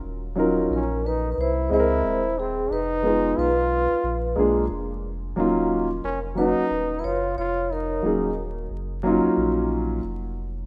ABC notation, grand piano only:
X:1
M:4/4
L:1/8
Q:"Swing 16ths" 1/4=90
K:Ebm
V:1 name="Grand piano"
z [G,DEFB] z3 [^G,=C=E^GB^d] z2 | z [A,CEFA] z3 [A,B,=DFA] z2 | [G,B,DEF] z2 [G,B,DEG] z4 | [G,B,DEA] z2 [G,B,DEF]3 z2 |]